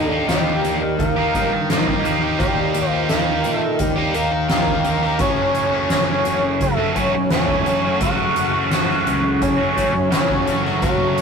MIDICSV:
0, 0, Header, 1, 7, 480
1, 0, Start_track
1, 0, Tempo, 702576
1, 1633, Time_signature, 4, 2, 24, 8
1, 7662, End_track
2, 0, Start_track
2, 0, Title_t, "Analog synth lead"
2, 0, Program_c, 0, 81
2, 0, Note_on_c, 0, 63, 103
2, 0, Note_on_c, 0, 70, 103
2, 29, Note_off_c, 0, 63, 0
2, 29, Note_off_c, 0, 70, 0
2, 29, Note_on_c, 0, 62, 103
2, 29, Note_on_c, 0, 69, 103
2, 166, Note_off_c, 0, 62, 0
2, 166, Note_off_c, 0, 69, 0
2, 195, Note_on_c, 0, 67, 88
2, 195, Note_on_c, 0, 74, 88
2, 646, Note_off_c, 0, 67, 0
2, 646, Note_off_c, 0, 74, 0
2, 679, Note_on_c, 0, 70, 104
2, 679, Note_on_c, 0, 77, 104
2, 1128, Note_off_c, 0, 70, 0
2, 1128, Note_off_c, 0, 77, 0
2, 1161, Note_on_c, 0, 63, 78
2, 1161, Note_on_c, 0, 70, 78
2, 1492, Note_off_c, 0, 63, 0
2, 1492, Note_off_c, 0, 70, 0
2, 1631, Note_on_c, 0, 67, 109
2, 1631, Note_on_c, 0, 74, 109
2, 1973, Note_off_c, 0, 67, 0
2, 1973, Note_off_c, 0, 74, 0
2, 1973, Note_on_c, 0, 65, 109
2, 1973, Note_on_c, 0, 72, 109
2, 2085, Note_off_c, 0, 65, 0
2, 2085, Note_off_c, 0, 72, 0
2, 2113, Note_on_c, 0, 70, 102
2, 2113, Note_on_c, 0, 77, 102
2, 2427, Note_off_c, 0, 70, 0
2, 2427, Note_off_c, 0, 77, 0
2, 2427, Note_on_c, 0, 69, 102
2, 2427, Note_on_c, 0, 76, 102
2, 2598, Note_on_c, 0, 67, 91
2, 2598, Note_on_c, 0, 74, 91
2, 2608, Note_off_c, 0, 69, 0
2, 2608, Note_off_c, 0, 76, 0
2, 2834, Note_on_c, 0, 70, 95
2, 2834, Note_on_c, 0, 77, 95
2, 2844, Note_off_c, 0, 67, 0
2, 2844, Note_off_c, 0, 74, 0
2, 3069, Note_off_c, 0, 70, 0
2, 3069, Note_off_c, 0, 77, 0
2, 3074, Note_on_c, 0, 70, 97
2, 3074, Note_on_c, 0, 77, 97
2, 3558, Note_on_c, 0, 73, 110
2, 3558, Note_on_c, 0, 80, 110
2, 3568, Note_off_c, 0, 70, 0
2, 3568, Note_off_c, 0, 77, 0
2, 4034, Note_off_c, 0, 73, 0
2, 4034, Note_off_c, 0, 80, 0
2, 4038, Note_on_c, 0, 73, 92
2, 4038, Note_on_c, 0, 80, 92
2, 4489, Note_off_c, 0, 73, 0
2, 4489, Note_off_c, 0, 80, 0
2, 4524, Note_on_c, 0, 69, 98
2, 4524, Note_on_c, 0, 76, 98
2, 4756, Note_on_c, 0, 73, 85
2, 4756, Note_on_c, 0, 80, 85
2, 4766, Note_off_c, 0, 69, 0
2, 4766, Note_off_c, 0, 76, 0
2, 4986, Note_off_c, 0, 73, 0
2, 4986, Note_off_c, 0, 80, 0
2, 4990, Note_on_c, 0, 73, 94
2, 4990, Note_on_c, 0, 80, 94
2, 5445, Note_off_c, 0, 73, 0
2, 5445, Note_off_c, 0, 80, 0
2, 5482, Note_on_c, 0, 78, 121
2, 5482, Note_on_c, 0, 85, 121
2, 5931, Note_off_c, 0, 78, 0
2, 5931, Note_off_c, 0, 85, 0
2, 5967, Note_on_c, 0, 78, 107
2, 5967, Note_on_c, 0, 85, 107
2, 6437, Note_on_c, 0, 73, 104
2, 6437, Note_on_c, 0, 80, 104
2, 6447, Note_off_c, 0, 78, 0
2, 6447, Note_off_c, 0, 85, 0
2, 6909, Note_off_c, 0, 73, 0
2, 6909, Note_off_c, 0, 80, 0
2, 6913, Note_on_c, 0, 73, 89
2, 6913, Note_on_c, 0, 80, 89
2, 7248, Note_off_c, 0, 73, 0
2, 7248, Note_off_c, 0, 80, 0
2, 7388, Note_on_c, 0, 66, 104
2, 7388, Note_on_c, 0, 73, 104
2, 7662, Note_off_c, 0, 66, 0
2, 7662, Note_off_c, 0, 73, 0
2, 7662, End_track
3, 0, Start_track
3, 0, Title_t, "String section"
3, 0, Program_c, 1, 48
3, 3564, Note_on_c, 1, 61, 59
3, 3566, Note_on_c, 1, 57, 58
3, 3567, Note_on_c, 1, 54, 67
3, 3570, Note_on_c, 1, 66, 67
3, 7662, Note_off_c, 1, 54, 0
3, 7662, Note_off_c, 1, 57, 0
3, 7662, Note_off_c, 1, 61, 0
3, 7662, Note_off_c, 1, 66, 0
3, 7662, End_track
4, 0, Start_track
4, 0, Title_t, "Overdriven electric guitar"
4, 0, Program_c, 2, 29
4, 0, Note_on_c, 2, 51, 70
4, 0, Note_on_c, 2, 58, 92
4, 0, Note_on_c, 2, 63, 85
4, 0, Note_on_c, 2, 67, 86
4, 69, Note_off_c, 2, 67, 0
4, 72, Note_on_c, 2, 67, 63
4, 81, Note_off_c, 2, 63, 0
4, 83, Note_on_c, 2, 63, 60
4, 88, Note_off_c, 2, 58, 0
4, 91, Note_on_c, 2, 58, 45
4, 184, Note_off_c, 2, 51, 0
4, 186, Note_on_c, 2, 51, 76
4, 195, Note_off_c, 2, 58, 0
4, 197, Note_on_c, 2, 58, 84
4, 198, Note_off_c, 2, 63, 0
4, 201, Note_on_c, 2, 63, 75
4, 204, Note_off_c, 2, 67, 0
4, 206, Note_on_c, 2, 67, 95
4, 550, Note_off_c, 2, 67, 0
4, 553, Note_off_c, 2, 58, 0
4, 555, Note_off_c, 2, 63, 0
4, 789, Note_off_c, 2, 51, 0
4, 796, Note_on_c, 2, 67, 61
4, 807, Note_on_c, 2, 63, 64
4, 813, Note_on_c, 2, 58, 51
4, 914, Note_off_c, 2, 58, 0
4, 917, Note_on_c, 2, 51, 70
4, 919, Note_off_c, 2, 63, 0
4, 922, Note_on_c, 2, 58, 71
4, 925, Note_off_c, 2, 67, 0
4, 927, Note_on_c, 2, 63, 78
4, 934, Note_on_c, 2, 67, 85
4, 1032, Note_off_c, 2, 67, 0
4, 1034, Note_off_c, 2, 63, 0
4, 1039, Note_off_c, 2, 58, 0
4, 1149, Note_off_c, 2, 51, 0
4, 1157, Note_on_c, 2, 51, 79
4, 1165, Note_on_c, 2, 58, 90
4, 1169, Note_on_c, 2, 63, 73
4, 1174, Note_on_c, 2, 67, 83
4, 1385, Note_off_c, 2, 51, 0
4, 1390, Note_off_c, 2, 58, 0
4, 1393, Note_on_c, 2, 51, 66
4, 1396, Note_off_c, 2, 63, 0
4, 1398, Note_on_c, 2, 58, 70
4, 1402, Note_off_c, 2, 67, 0
4, 1404, Note_on_c, 2, 63, 73
4, 1410, Note_on_c, 2, 67, 62
4, 1503, Note_off_c, 2, 67, 0
4, 1511, Note_off_c, 2, 63, 0
4, 1511, Note_on_c, 2, 67, 67
4, 1519, Note_on_c, 2, 63, 64
4, 1521, Note_off_c, 2, 58, 0
4, 1529, Note_on_c, 2, 58, 52
4, 1617, Note_off_c, 2, 51, 0
4, 1625, Note_on_c, 2, 51, 85
4, 1627, Note_off_c, 2, 58, 0
4, 1629, Note_off_c, 2, 63, 0
4, 1635, Note_off_c, 2, 67, 0
4, 1635, Note_on_c, 2, 58, 81
4, 1637, Note_on_c, 2, 63, 78
4, 1643, Note_on_c, 2, 67, 84
4, 1978, Note_off_c, 2, 67, 0
4, 1987, Note_on_c, 2, 67, 62
4, 1992, Note_off_c, 2, 63, 0
4, 1996, Note_off_c, 2, 58, 0
4, 2000, Note_on_c, 2, 63, 56
4, 2004, Note_on_c, 2, 58, 50
4, 2098, Note_off_c, 2, 51, 0
4, 2107, Note_on_c, 2, 51, 77
4, 2109, Note_off_c, 2, 58, 0
4, 2113, Note_off_c, 2, 63, 0
4, 2117, Note_off_c, 2, 67, 0
4, 2117, Note_on_c, 2, 58, 76
4, 2121, Note_on_c, 2, 63, 84
4, 2125, Note_on_c, 2, 67, 95
4, 2463, Note_off_c, 2, 67, 0
4, 2466, Note_off_c, 2, 63, 0
4, 2470, Note_off_c, 2, 58, 0
4, 2707, Note_on_c, 2, 67, 63
4, 2710, Note_off_c, 2, 51, 0
4, 2718, Note_on_c, 2, 63, 57
4, 2725, Note_on_c, 2, 58, 50
4, 2823, Note_on_c, 2, 51, 70
4, 2825, Note_off_c, 2, 58, 0
4, 2830, Note_off_c, 2, 63, 0
4, 2831, Note_off_c, 2, 67, 0
4, 2833, Note_on_c, 2, 58, 69
4, 2838, Note_on_c, 2, 63, 72
4, 2839, Note_on_c, 2, 67, 73
4, 2940, Note_off_c, 2, 63, 0
4, 2942, Note_off_c, 2, 67, 0
4, 2945, Note_off_c, 2, 58, 0
4, 3056, Note_off_c, 2, 51, 0
4, 3064, Note_on_c, 2, 51, 77
4, 3074, Note_on_c, 2, 58, 71
4, 3079, Note_on_c, 2, 63, 85
4, 3083, Note_on_c, 2, 67, 82
4, 3300, Note_off_c, 2, 51, 0
4, 3307, Note_off_c, 2, 58, 0
4, 3308, Note_on_c, 2, 51, 61
4, 3311, Note_off_c, 2, 63, 0
4, 3315, Note_on_c, 2, 58, 64
4, 3318, Note_off_c, 2, 67, 0
4, 3320, Note_on_c, 2, 63, 74
4, 3326, Note_on_c, 2, 67, 71
4, 3420, Note_off_c, 2, 67, 0
4, 3428, Note_on_c, 2, 67, 61
4, 3430, Note_off_c, 2, 63, 0
4, 3438, Note_off_c, 2, 58, 0
4, 3438, Note_on_c, 2, 63, 52
4, 3446, Note_on_c, 2, 58, 51
4, 3536, Note_off_c, 2, 51, 0
4, 3537, Note_off_c, 2, 67, 0
4, 3542, Note_off_c, 2, 63, 0
4, 3544, Note_on_c, 2, 42, 86
4, 3546, Note_off_c, 2, 58, 0
4, 3546, Note_on_c, 2, 49, 74
4, 3553, Note_on_c, 2, 54, 77
4, 3553, Note_on_c, 2, 57, 79
4, 3555, Note_on_c, 2, 61, 86
4, 3559, Note_on_c, 2, 66, 83
4, 3901, Note_off_c, 2, 66, 0
4, 3904, Note_on_c, 2, 66, 54
4, 3907, Note_off_c, 2, 61, 0
4, 3910, Note_on_c, 2, 61, 53
4, 3911, Note_off_c, 2, 57, 0
4, 3914, Note_on_c, 2, 57, 54
4, 3918, Note_off_c, 2, 54, 0
4, 3921, Note_on_c, 2, 54, 47
4, 4019, Note_off_c, 2, 49, 0
4, 4021, Note_off_c, 2, 42, 0
4, 4024, Note_on_c, 2, 42, 80
4, 4026, Note_off_c, 2, 54, 0
4, 4027, Note_on_c, 2, 49, 83
4, 4028, Note_on_c, 2, 54, 75
4, 4029, Note_off_c, 2, 57, 0
4, 4031, Note_off_c, 2, 61, 0
4, 4032, Note_on_c, 2, 57, 72
4, 4034, Note_on_c, 2, 61, 89
4, 4036, Note_off_c, 2, 66, 0
4, 4039, Note_on_c, 2, 66, 95
4, 4390, Note_off_c, 2, 66, 0
4, 4392, Note_off_c, 2, 57, 0
4, 4394, Note_off_c, 2, 54, 0
4, 4394, Note_off_c, 2, 61, 0
4, 4628, Note_on_c, 2, 66, 65
4, 4631, Note_off_c, 2, 49, 0
4, 4634, Note_on_c, 2, 61, 59
4, 4642, Note_on_c, 2, 57, 52
4, 4645, Note_on_c, 2, 54, 50
4, 4744, Note_off_c, 2, 54, 0
4, 4747, Note_on_c, 2, 54, 79
4, 4751, Note_off_c, 2, 57, 0
4, 4754, Note_on_c, 2, 57, 74
4, 4759, Note_off_c, 2, 61, 0
4, 4762, Note_on_c, 2, 61, 78
4, 4763, Note_off_c, 2, 66, 0
4, 4766, Note_on_c, 2, 66, 73
4, 4880, Note_off_c, 2, 66, 0
4, 4882, Note_off_c, 2, 57, 0
4, 4882, Note_off_c, 2, 61, 0
4, 4887, Note_off_c, 2, 54, 0
4, 4993, Note_off_c, 2, 42, 0
4, 4996, Note_on_c, 2, 42, 78
4, 4999, Note_on_c, 2, 49, 88
4, 5001, Note_on_c, 2, 54, 82
4, 5007, Note_on_c, 2, 57, 85
4, 5009, Note_on_c, 2, 61, 88
4, 5012, Note_on_c, 2, 66, 83
4, 5234, Note_off_c, 2, 54, 0
4, 5236, Note_on_c, 2, 54, 64
4, 5240, Note_off_c, 2, 57, 0
4, 5243, Note_on_c, 2, 57, 57
4, 5246, Note_off_c, 2, 61, 0
4, 5249, Note_on_c, 2, 61, 67
4, 5252, Note_off_c, 2, 66, 0
4, 5255, Note_on_c, 2, 66, 66
4, 5356, Note_off_c, 2, 66, 0
4, 5359, Note_on_c, 2, 66, 60
4, 5360, Note_off_c, 2, 61, 0
4, 5363, Note_on_c, 2, 61, 54
4, 5366, Note_off_c, 2, 57, 0
4, 5369, Note_on_c, 2, 57, 51
4, 5372, Note_off_c, 2, 54, 0
4, 5375, Note_on_c, 2, 54, 50
4, 5470, Note_off_c, 2, 42, 0
4, 5471, Note_off_c, 2, 49, 0
4, 5473, Note_on_c, 2, 42, 75
4, 5479, Note_on_c, 2, 49, 80
4, 5480, Note_off_c, 2, 54, 0
4, 5482, Note_on_c, 2, 54, 84
4, 5484, Note_off_c, 2, 57, 0
4, 5487, Note_on_c, 2, 57, 76
4, 5488, Note_off_c, 2, 61, 0
4, 5488, Note_off_c, 2, 66, 0
4, 5491, Note_on_c, 2, 61, 91
4, 5491, Note_on_c, 2, 66, 89
4, 5827, Note_off_c, 2, 66, 0
4, 5830, Note_on_c, 2, 66, 61
4, 5834, Note_off_c, 2, 61, 0
4, 5837, Note_on_c, 2, 61, 55
4, 5840, Note_off_c, 2, 57, 0
4, 5843, Note_on_c, 2, 57, 55
4, 5845, Note_off_c, 2, 54, 0
4, 5847, Note_on_c, 2, 54, 45
4, 5944, Note_off_c, 2, 49, 0
4, 5946, Note_off_c, 2, 42, 0
4, 5948, Note_on_c, 2, 42, 78
4, 5952, Note_off_c, 2, 54, 0
4, 5952, Note_on_c, 2, 49, 85
4, 5954, Note_off_c, 2, 57, 0
4, 5954, Note_on_c, 2, 54, 87
4, 5957, Note_on_c, 2, 57, 82
4, 5958, Note_off_c, 2, 61, 0
4, 5961, Note_on_c, 2, 61, 88
4, 5964, Note_off_c, 2, 66, 0
4, 5967, Note_on_c, 2, 66, 94
4, 6315, Note_off_c, 2, 66, 0
4, 6317, Note_off_c, 2, 57, 0
4, 6319, Note_off_c, 2, 54, 0
4, 6319, Note_off_c, 2, 61, 0
4, 6542, Note_on_c, 2, 66, 65
4, 6553, Note_off_c, 2, 49, 0
4, 6553, Note_on_c, 2, 61, 63
4, 6557, Note_on_c, 2, 57, 48
4, 6563, Note_on_c, 2, 54, 56
4, 6661, Note_off_c, 2, 54, 0
4, 6664, Note_on_c, 2, 54, 77
4, 6668, Note_off_c, 2, 57, 0
4, 6671, Note_on_c, 2, 57, 79
4, 6676, Note_off_c, 2, 61, 0
4, 6679, Note_on_c, 2, 61, 78
4, 6681, Note_off_c, 2, 66, 0
4, 6684, Note_on_c, 2, 66, 79
4, 6787, Note_off_c, 2, 61, 0
4, 6787, Note_off_c, 2, 66, 0
4, 6790, Note_off_c, 2, 54, 0
4, 6790, Note_off_c, 2, 57, 0
4, 6899, Note_off_c, 2, 42, 0
4, 6902, Note_on_c, 2, 42, 77
4, 6907, Note_on_c, 2, 49, 90
4, 6910, Note_on_c, 2, 54, 87
4, 6913, Note_on_c, 2, 57, 85
4, 6918, Note_on_c, 2, 61, 83
4, 6922, Note_on_c, 2, 66, 90
4, 7147, Note_off_c, 2, 54, 0
4, 7150, Note_on_c, 2, 54, 69
4, 7151, Note_off_c, 2, 57, 0
4, 7154, Note_on_c, 2, 57, 58
4, 7159, Note_off_c, 2, 61, 0
4, 7162, Note_on_c, 2, 61, 73
4, 7164, Note_off_c, 2, 66, 0
4, 7167, Note_on_c, 2, 66, 64
4, 7263, Note_off_c, 2, 66, 0
4, 7266, Note_on_c, 2, 66, 59
4, 7270, Note_off_c, 2, 61, 0
4, 7272, Note_on_c, 2, 61, 54
4, 7275, Note_off_c, 2, 57, 0
4, 7277, Note_on_c, 2, 57, 52
4, 7279, Note_off_c, 2, 54, 0
4, 7282, Note_on_c, 2, 54, 52
4, 7377, Note_off_c, 2, 42, 0
4, 7378, Note_off_c, 2, 49, 0
4, 7380, Note_on_c, 2, 42, 79
4, 7386, Note_on_c, 2, 49, 75
4, 7388, Note_off_c, 2, 54, 0
4, 7390, Note_on_c, 2, 54, 80
4, 7391, Note_off_c, 2, 57, 0
4, 7393, Note_on_c, 2, 57, 79
4, 7394, Note_off_c, 2, 61, 0
4, 7395, Note_off_c, 2, 66, 0
4, 7397, Note_on_c, 2, 61, 79
4, 7398, Note_on_c, 2, 66, 80
4, 7662, Note_off_c, 2, 42, 0
4, 7662, Note_off_c, 2, 49, 0
4, 7662, Note_off_c, 2, 54, 0
4, 7662, Note_off_c, 2, 57, 0
4, 7662, Note_off_c, 2, 61, 0
4, 7662, Note_off_c, 2, 66, 0
4, 7662, End_track
5, 0, Start_track
5, 0, Title_t, "Picked electric bass"
5, 0, Program_c, 3, 34
5, 0, Note_on_c, 3, 39, 74
5, 139, Note_off_c, 3, 39, 0
5, 191, Note_on_c, 3, 39, 69
5, 404, Note_off_c, 3, 39, 0
5, 434, Note_on_c, 3, 39, 78
5, 646, Note_off_c, 3, 39, 0
5, 678, Note_on_c, 3, 39, 81
5, 889, Note_off_c, 3, 39, 0
5, 918, Note_on_c, 3, 43, 76
5, 1128, Note_off_c, 3, 43, 0
5, 1160, Note_on_c, 3, 36, 76
5, 1369, Note_off_c, 3, 36, 0
5, 1396, Note_on_c, 3, 39, 76
5, 1608, Note_off_c, 3, 39, 0
5, 1642, Note_on_c, 3, 39, 66
5, 1851, Note_off_c, 3, 39, 0
5, 1876, Note_on_c, 3, 39, 69
5, 2088, Note_off_c, 3, 39, 0
5, 2123, Note_on_c, 3, 39, 76
5, 2332, Note_off_c, 3, 39, 0
5, 2361, Note_on_c, 3, 46, 74
5, 2571, Note_off_c, 3, 46, 0
5, 2595, Note_on_c, 3, 39, 79
5, 2807, Note_off_c, 3, 39, 0
5, 2830, Note_on_c, 3, 39, 80
5, 3045, Note_off_c, 3, 39, 0
5, 3077, Note_on_c, 3, 39, 72
5, 3288, Note_off_c, 3, 39, 0
5, 3314, Note_on_c, 3, 39, 75
5, 3527, Note_off_c, 3, 39, 0
5, 3552, Note_on_c, 3, 30, 74
5, 3979, Note_off_c, 3, 30, 0
5, 4037, Note_on_c, 3, 30, 68
5, 4249, Note_off_c, 3, 30, 0
5, 4272, Note_on_c, 3, 30, 72
5, 4486, Note_off_c, 3, 30, 0
5, 4516, Note_on_c, 3, 30, 89
5, 4728, Note_off_c, 3, 30, 0
5, 4754, Note_on_c, 3, 35, 76
5, 4967, Note_off_c, 3, 35, 0
5, 4994, Note_on_c, 3, 28, 81
5, 5207, Note_off_c, 3, 28, 0
5, 5235, Note_on_c, 3, 30, 74
5, 5447, Note_off_c, 3, 30, 0
5, 5474, Note_on_c, 3, 30, 74
5, 5687, Note_off_c, 3, 30, 0
5, 5714, Note_on_c, 3, 30, 82
5, 5927, Note_off_c, 3, 30, 0
5, 5956, Note_on_c, 3, 30, 73
5, 6168, Note_off_c, 3, 30, 0
5, 6195, Note_on_c, 3, 37, 77
5, 6408, Note_off_c, 3, 37, 0
5, 6436, Note_on_c, 3, 30, 88
5, 6648, Note_off_c, 3, 30, 0
5, 6677, Note_on_c, 3, 30, 80
5, 6888, Note_off_c, 3, 30, 0
5, 6916, Note_on_c, 3, 30, 76
5, 7128, Note_off_c, 3, 30, 0
5, 7151, Note_on_c, 3, 30, 79
5, 7365, Note_off_c, 3, 30, 0
5, 7397, Note_on_c, 3, 30, 68
5, 7662, Note_off_c, 3, 30, 0
5, 7662, End_track
6, 0, Start_track
6, 0, Title_t, "Muted overdriven electric guitar strokes"
6, 558, Note_on_c, 9, 29, 40
6, 626, Note_off_c, 9, 29, 0
6, 1040, Note_on_c, 9, 29, 46
6, 1109, Note_off_c, 9, 29, 0
6, 2472, Note_on_c, 9, 29, 39
6, 2540, Note_off_c, 9, 29, 0
6, 2948, Note_on_c, 9, 29, 39
6, 3016, Note_off_c, 9, 29, 0
6, 4393, Note_on_c, 9, 29, 42
6, 4461, Note_off_c, 9, 29, 0
6, 4883, Note_on_c, 9, 29, 45
6, 4951, Note_off_c, 9, 29, 0
6, 6317, Note_on_c, 9, 29, 48
6, 6386, Note_off_c, 9, 29, 0
6, 6790, Note_on_c, 9, 29, 45
6, 6858, Note_off_c, 9, 29, 0
6, 7662, End_track
7, 0, Start_track
7, 0, Title_t, "Drums"
7, 197, Note_on_c, 9, 38, 89
7, 197, Note_on_c, 9, 42, 66
7, 266, Note_off_c, 9, 38, 0
7, 266, Note_off_c, 9, 42, 0
7, 440, Note_on_c, 9, 42, 53
7, 509, Note_off_c, 9, 42, 0
7, 678, Note_on_c, 9, 36, 80
7, 681, Note_on_c, 9, 42, 73
7, 746, Note_off_c, 9, 36, 0
7, 750, Note_off_c, 9, 42, 0
7, 918, Note_on_c, 9, 36, 64
7, 921, Note_on_c, 9, 42, 56
7, 986, Note_off_c, 9, 36, 0
7, 989, Note_off_c, 9, 42, 0
7, 1161, Note_on_c, 9, 38, 109
7, 1161, Note_on_c, 9, 42, 81
7, 1229, Note_off_c, 9, 38, 0
7, 1229, Note_off_c, 9, 42, 0
7, 1279, Note_on_c, 9, 36, 65
7, 1348, Note_off_c, 9, 36, 0
7, 1401, Note_on_c, 9, 42, 52
7, 1470, Note_off_c, 9, 42, 0
7, 1638, Note_on_c, 9, 36, 96
7, 1639, Note_on_c, 9, 42, 74
7, 1707, Note_off_c, 9, 36, 0
7, 1708, Note_off_c, 9, 42, 0
7, 1875, Note_on_c, 9, 42, 58
7, 1944, Note_off_c, 9, 42, 0
7, 2113, Note_on_c, 9, 38, 86
7, 2113, Note_on_c, 9, 42, 64
7, 2182, Note_off_c, 9, 38, 0
7, 2182, Note_off_c, 9, 42, 0
7, 2352, Note_on_c, 9, 42, 53
7, 2420, Note_off_c, 9, 42, 0
7, 2589, Note_on_c, 9, 42, 81
7, 2594, Note_on_c, 9, 36, 73
7, 2658, Note_off_c, 9, 42, 0
7, 2662, Note_off_c, 9, 36, 0
7, 2831, Note_on_c, 9, 42, 56
7, 2900, Note_off_c, 9, 42, 0
7, 3071, Note_on_c, 9, 38, 104
7, 3071, Note_on_c, 9, 42, 78
7, 3140, Note_off_c, 9, 38, 0
7, 3140, Note_off_c, 9, 42, 0
7, 3193, Note_on_c, 9, 36, 62
7, 3262, Note_off_c, 9, 36, 0
7, 3311, Note_on_c, 9, 42, 58
7, 3379, Note_off_c, 9, 42, 0
7, 3428, Note_on_c, 9, 38, 30
7, 3497, Note_off_c, 9, 38, 0
7, 3547, Note_on_c, 9, 42, 80
7, 3551, Note_on_c, 9, 36, 96
7, 3615, Note_off_c, 9, 42, 0
7, 3620, Note_off_c, 9, 36, 0
7, 3789, Note_on_c, 9, 42, 48
7, 3858, Note_off_c, 9, 42, 0
7, 4031, Note_on_c, 9, 38, 90
7, 4031, Note_on_c, 9, 42, 65
7, 4100, Note_off_c, 9, 38, 0
7, 4100, Note_off_c, 9, 42, 0
7, 4271, Note_on_c, 9, 42, 52
7, 4339, Note_off_c, 9, 42, 0
7, 4513, Note_on_c, 9, 36, 75
7, 4514, Note_on_c, 9, 42, 73
7, 4581, Note_off_c, 9, 36, 0
7, 4582, Note_off_c, 9, 42, 0
7, 4753, Note_on_c, 9, 36, 56
7, 4754, Note_on_c, 9, 42, 56
7, 4821, Note_off_c, 9, 36, 0
7, 4822, Note_off_c, 9, 42, 0
7, 4991, Note_on_c, 9, 38, 106
7, 4991, Note_on_c, 9, 42, 74
7, 5059, Note_off_c, 9, 38, 0
7, 5059, Note_off_c, 9, 42, 0
7, 5112, Note_on_c, 9, 36, 68
7, 5180, Note_off_c, 9, 36, 0
7, 5234, Note_on_c, 9, 42, 54
7, 5302, Note_off_c, 9, 42, 0
7, 5470, Note_on_c, 9, 42, 80
7, 5472, Note_on_c, 9, 36, 86
7, 5539, Note_off_c, 9, 42, 0
7, 5540, Note_off_c, 9, 36, 0
7, 5712, Note_on_c, 9, 42, 51
7, 5780, Note_off_c, 9, 42, 0
7, 5954, Note_on_c, 9, 38, 92
7, 5954, Note_on_c, 9, 42, 64
7, 6022, Note_off_c, 9, 38, 0
7, 6022, Note_off_c, 9, 42, 0
7, 6075, Note_on_c, 9, 38, 33
7, 6144, Note_off_c, 9, 38, 0
7, 6196, Note_on_c, 9, 42, 57
7, 6264, Note_off_c, 9, 42, 0
7, 6434, Note_on_c, 9, 36, 73
7, 6434, Note_on_c, 9, 42, 78
7, 6502, Note_off_c, 9, 36, 0
7, 6503, Note_off_c, 9, 42, 0
7, 6675, Note_on_c, 9, 36, 58
7, 6679, Note_on_c, 9, 42, 56
7, 6743, Note_off_c, 9, 36, 0
7, 6747, Note_off_c, 9, 42, 0
7, 6914, Note_on_c, 9, 38, 92
7, 6914, Note_on_c, 9, 42, 82
7, 6982, Note_off_c, 9, 38, 0
7, 6982, Note_off_c, 9, 42, 0
7, 7034, Note_on_c, 9, 36, 63
7, 7103, Note_off_c, 9, 36, 0
7, 7156, Note_on_c, 9, 42, 61
7, 7224, Note_off_c, 9, 42, 0
7, 7277, Note_on_c, 9, 38, 35
7, 7346, Note_off_c, 9, 38, 0
7, 7394, Note_on_c, 9, 36, 96
7, 7394, Note_on_c, 9, 42, 77
7, 7462, Note_off_c, 9, 42, 0
7, 7463, Note_off_c, 9, 36, 0
7, 7636, Note_on_c, 9, 42, 55
7, 7662, Note_off_c, 9, 42, 0
7, 7662, End_track
0, 0, End_of_file